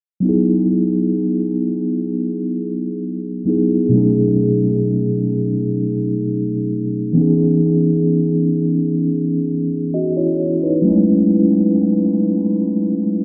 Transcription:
0.20 F#3 B3
0.25 D#4 E4
0.29 G#4
3.45 F#3 B3 D#4 E4
3.50 G#4
3.89 B2 F#3 A3
3.94 C#4 D#4 G#4
7.13 E3 B3
7.17 C#4 D#4
7.21 G#4
9.94 F#4 D#5
10.17 E4 C#5
10.63 D#4 B4
10.82 F#3 A3
10.86 C#4 E4
10.91 G#3

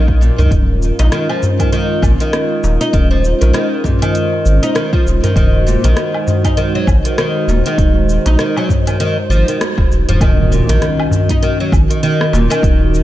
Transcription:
Already playing: A#1 D#3 F#3 C#4 D#4 A#4 F5
0.08 kick
0.21 A#2, cabasa
0.38 C#2 D#3, darbuka dum, cabasa
0.51 D#1 G#3 C#4 F4, kick, closed hi-hat, cabasa
0.82 cabasa
0.99 A#1 D#4, closed hi-hat, darbuka ka, darbuka tek, cabasa
1.12 D#3, cross-stick, closed hi-hat, cabasa
1.29 F3, low woodblock
1.43 darbuka dum, cabasa
1.60 D#3, kick, closed hi-hat, cabasa, low woodblock
1.72 D#3, closed hi-hat, cabasa
2.02 G#1 A#2, kick, cabasa, low woodblock
2.20 D#3, closed hi-hat, cabasa
2.33 cross-stick, closed hi-hat, cabasa
2.64 D#1, darbuka tek, cabasa
2.81 D#4, closed hi-hat, cabasa
2.93 D#1 D#3 C5, kick, closed hi-hat, cabasa
3.11 F3, darbuka ka
3.24 cabasa
3.41 A#1 D#3, closed hi-hat, darbuka tek, cabasa
3.53 D#3, cross-stick, closed hi-hat, cabasa
3.84 A#2, kick, darbuka ka, darbuka dum, cabasa
4.02 D#3, closed hi-hat, cabasa, low woodblock
4.15 closed hi-hat, cabasa
4.32 darbuka tek
4.46 G#1, cabasa
4.63 D#4, closed hi-hat, cabasa
4.75 D#3, cross-stick, closed hi-hat, cabasa
4.93 F3, kick
5.06 D#1, cabasa
5.23 D#3, closed hi-hat, darbuka dum, cabasa
5.35 D#1 D#3 G#3 D#4 F#4, kick, closed hi-hat, cabasa
5.67 A#2, cabasa
5.84 A#1 D#3, closed hi-hat, darbuka ka, darbuka tek, cabasa
5.97 cross-stick, closed hi-hat, cabasa
6.14 low woodblock
6.28 darbuka dum, cabasa
6.44 D#4, kick, closed hi-hat, cabasa, low woodblock
6.57 D#3, closed hi-hat, cabasa
6.75 F#3
6.87 G#1, kick, cabasa, low woodblock
7.05 D#3, closed hi-hat, cabasa
7.18 D#3, cross-stick, closed hi-hat, cabasa
7.48 D#1 A#2, darbuka tek, cabasa
7.66 D#3, closed hi-hat, cabasa
7.78 D#1, kick, closed hi-hat, cabasa
7.96 darbuka ka
8.09 cabasa
8.26 A#1 D#4, closed hi-hat, darbuka ka, darbuka tek, cabasa
8.39 D#3, cross-stick, closed hi-hat, cabasa
8.56 F#3, darbuka tek, low woodblock
8.69 kick, darbuka ka, darbuka dum, cabasa
8.87 D#3, closed hi-hat, darbuka ka, cabasa, low woodblock
9.00 D#3, closed hi-hat, cabasa
9.17 darbuka tek
9.30 G#1 F3, cabasa
9.48 D#3, closed hi-hat, cabasa
9.61 cross-stick, closed hi-hat, cabasa
9.78 D#1, kick, cross-stick
9.91 D#1, cabasa
10.09 D#1 F3, closed hi-hat, darbuka dum, cabasa
10.20 D#1 D#3 C#4 F#4 A#4, kick, closed hi-hat, impact, cabasa, low woodblock
10.52 A#2, cabasa
10.69 A#1 D#3, closed hi-hat, darbuka ka, darbuka tek, cabasa
10.82 cross-stick, closed hi-hat, cabasa
11.00 low woodblock
11.11 darbuka dum, cabasa
11.29 D#4, kick, closed hi-hat, cabasa
11.43 D#3, closed hi-hat, cabasa
11.60 F#3
11.72 G#1, kick, cabasa, low woodblock
11.90 D#3, closed hi-hat, cabasa
12.03 D#3, closed hi-hat, cabasa
12.21 cross-stick
12.33 D#1 A#2, darbuka tek, cabasa
12.50 D#3, closed hi-hat, cabasa, low woodblock
12.63 D#1, kick, closed hi-hat, cabasa
12.81 darbuka ka
12.95 cabasa

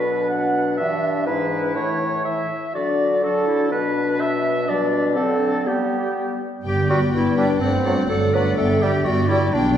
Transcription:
Already playing: B2 F#3 D4 B4
0.30 F#5
0.77 G2 E3 E5
1.27 G#2 E3 D4 E4 B4
1.75 A2 E3 E4 C#5
2.25 E3 E4 E5
2.74 D3 F#3 D4 F#4 D5
3.23 F#3 D4 F#4 A4
3.47 E4
3.71 B2 F#3 D4 B4
4.21 E5
4.67 B2 G3 D4 D5
5.15 D3 F#3 C4 A4
5.65 G3 B3 G4
6.65 G1 G2 G3 B3 G4 D5 G5
6.89 G3 B3 F#4 B4 D5 G5
7.13 G1 G2 B3 E4 B4 D5 G5
7.37 G3 B3 D4 B4 D5 G5
7.60 G1 G2 F#3 A3 C4 D4 C5 D5 F#5
7.85 F#3 A3 D5 F#5
8.09 G1 G2 A3 A4 D5 F#5
8.34 F#3 A3 B4 D5 F#5
8.57 G1 G2 G3 B3 A4 D5 E5 G5
8.81 G3 B3 G4 D5 G5
9.05 G1 G2 B3 F#4 D5 G5
9.28 G3 B3 E4 D5 G5
9.53 B1 B2 B3 D4 D5 G5

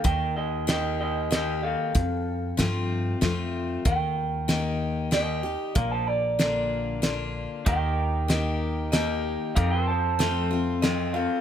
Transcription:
0.04 D#2 D#3 A#4 G5, kick, closed hi-hat
0.36 G4 D#5
0.67 D#3 A#3 D#4 G4 D#5, snare, closed hi-hat
1.01 G4 D#5
1.31 D#3 A#3 D#4 G4 D#5, snare, closed hi-hat
1.63 A4 F5
1.95 F2, kick, closed hi-hat
2.57 G2 F3 A3 C4 F4, snare, closed hi-hat
3.21 F2 F3 A3 C4 F4, snare, closed hi-hat
3.85 D#2 D#3 A#4 G5, kick, closed hi-hat
4.48 D#3 A#3 D#4 G4, snare, closed hi-hat
5.11 D#3 A#3 D#4 G4 D#5, snare, closed hi-hat
5.43 D#4 G4
5.75 A#1 A#2 A#4 F5, kick, closed hi-hat
5.91 C5 A5
6.07 D5 A#5
6.39 D3 A#3 D4 F4, snare, closed hi-hat
7.02 D3 A#3 D4 F4, snare, closed hi-hat
7.66 D#2 D#3 D#4 G4 A#4 G5, kick, closed hi-hat
8.28 D#3 A#3 D#4 G4, snare, closed hi-hat
8.92 D#3 A#3 D#4 G4 D#5, snare, closed hi-hat
9.55 F2 D#4 G4 A4 A#4 F5, kick, closed hi-hat
9.71 A#4 G5
9.81 F4 A4 C5
9.87 C5 A5
10.19 F3 A3 C4 F4, snare, closed hi-hat
10.51 C4 F4
10.82 F3 A3 C4 F4 A4 D#5, snare, closed hi-hat
11.13 C4 F4 A4 F5

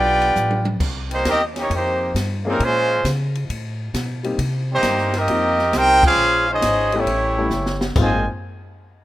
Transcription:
Already playing: B1 B3 D4 F4 G4 B4 D5 G5
0.22 ride
0.36 A1, hi-hat pedal, high tom
0.51 high tom
0.65 high tom
0.80 C2, kick, crash
1.09 D#3 G3 A#3 C4 D#4 C5, ride
1.13 G4
1.24 D#2 G3 A#3 D#4 G4 A#4, kick, snare, hi-hat pedal, ride
1.28 C4 D#5
1.54 C#4, snare, ride
1.59 A#3 D#4 G4 C#5
1.70 F2 C3 D#3 C4 G4, kick, ride
1.74 A#3 D#4 C5
2.15 G2, kick, snare, hi-hat pedal, ride
2.44 C3 D#3 A#3 C4 C#4 F4 G#4
2.48 G3 D#4 A#4
2.59 A#2 F3 G#3 C#4 C5, kick, ride
2.63 G#3 C#4 F4
3.04 C#3, kick, snare, hi-hat pedal, ride
3.35 ride
3.49 A2, kick, ride
3.94 B2, kick, snare, hi-hat pedal, ride
4.23 G3 A#3 C4 D#4 G4, ride
4.38 C3, kick, ride
4.71 D#3 G3 A#3 C4 D#4 G4 C5
4.83 G2, kick, snare, hi-hat pedal, ride
4.98 snare
5.13 A#3 C4 D#4 G4 A#4, snare, ride
5.17 D#5
5.28 F2 G3 A#3 C4 D#4 F4, kick, ride
5.59 snare
5.73 C2 C4 D#4 G4 A#4 C5 G5, kick, snare, hi-hat pedal, ride
6.03 G#3 C#4 F4 G#4 C5 F5, kick, crash
6.16 A#1
6.48 F3 G#3 C#4 D#4 C5 D#5
6.53 G#4
6.62 G#1, kick, snare, hi-hat pedal, ride
6.92 E3 G3 A3 B3 C#4 E4, ride
6.97 A3 E4 G4 C#5
7.06 A1, kick, ride
7.37 G3 A3 B3 C#4 E4
7.50 F#1, snare, hi-hat pedal
7.66 snare
7.81 snare
7.96 G#1 G#2 D#3 F3 G#3 A#3 C4 D#4 F4 C5 D#5 G#5, kick, floor tom, china

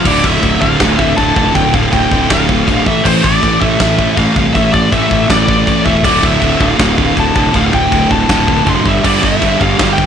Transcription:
0.05 D1 D2 A2 D3 D5, kick, crash, china
0.24 D1 D2 A2 D3 E5, kick
0.41 D1 D2 A2 D3, kick, china
0.61 D1 D2 A2 D3 F5, kick
0.80 D1 D2 A2 D3, kick, snare, china
0.99 D2 A2 D3 E5, kick
1.17 D1 D2 A2 D3 A5, kick, china
1.36 F1 D2 A2 D3, kick
1.54 D1 D2 A2 D3 G5, kick, china
1.74 D2 A2 D3 F5, kick
1.92 D1 D2 A2 D3 G5, kick, china
2.11 D1 D2 A2 D3, kick
2.30 D1 D2 A2 D3 F5, kick, snare, china
2.49 D2 A2 D3, kick
2.67 D1 D2 A2 D3, kick, china
2.86 A1 A2 E3 A3 E5, kick
3.04 A1 A2 E3 A3 C5, kick, crash, china
3.23 A1 A2 E3 A3 D5, kick
3.43 A1 A2 E3 A3, kick, china
3.53 D5
3.61 A1 A2 E3 A3 E5, kick
3.80 A1 A2 E3 A3, kick, snare, china
3.99 A2 E3 A3, kick
4.17 A1 A2 E3 A3 F5, kick, china
4.36 C2 A2 E3 A3, kick
4.54 A1 A2 E3 A3 E5, kick, china
4.73 A2 E3 A3 D5, kick
4.92 A1 A2 E3 A3 E5, kick, china
5.10 A1 A2 E3 A3, kick
5.28 A1 A2 E3 A3 D5, kick, snare, china
5.48 A2 E3 A3, kick
5.67 A1 A2 E3 A3, kick, china
5.86 E1 A2 E3 A3 E5, kick
6.04 D1 D2 A2 D3 D5, kick, crash, china
6.23 D1 D2 A2 D3 E5, kick
6.40 D1 D2 A2 D3, kick, china
6.59 D1 D2 A2 D3 F5, kick
6.78 D1 D2 A2 D3, kick, snare, china
6.98 D2 A2 D3, kick
7.15 D1 D2 A2 D3, kick, china
7.19 A5
7.34 F1 D2 A2 D3 A5, kick
7.51 D1 D2 A2 D3, kick, china
7.56 F5
7.66 F5
7.71 D2 A2 D3 G5, kick
7.90 D1 D2 A2 D3, kick, china
8.10 D1 D2 A2 D3 A5, kick
8.28 D1 D2 A2 D3, kick, snare, china
8.48 D2 A2 D3, kick
8.65 F#1 D2 A2 D3 C6, kick, china
8.85 G1 G2 D3 G3 E5, kick
9.04 G1 G2 D3 G3 D5, kick, crash, china
9.22 G1 G2 D3 G3 E5, kick
9.40 G1 G2 D3 G3, kick, china
9.61 G1 G2 D3 G3 F5, kick
9.77 G1 G2 D3 G3, kick, snare, china
9.93 G5
9.97 G2 D3 G3, kick

